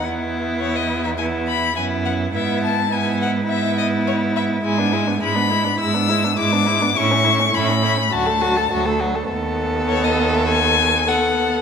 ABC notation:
X:1
M:4/4
L:1/16
Q:1/4=104
K:E
V:1 name="Violin"
z4 c d2 e g2 b2 g2 f2 | e2 a2 g2 f2 e2 d2 c2 e2 | [K:Emix] g4 b4 e'4 d'4 | c'4 b4 a6 z2 |
z4 c ^d2 e g4 f4 |]
V:2 name="Violin"
E8 E4 E4 | E4 E4 E8 | [K:Emix] E D E D E D E D E D E D E D E D | E C E C E C E C F A F A F A F A |
A12 A4 |]
V:3 name="Viola"
B,8 B,4 B,4 | B,4 B,4 B,8 | [K:Emix] G, B, G, B, G, B, G, B, G, B, G, B, G, B, G, B, | C A, C A, C A, C A, F, A, F, A, F, A, F, A, |
B,12 B,4 |]
V:4 name="Cello" clef=bass
E,,12 F,,4 | G,,16 | [K:Emix] G,,4 G,,4 G,,4 G,,4 | A,,4 A,,4 D,,4 D,,4 |
^D,,16 |]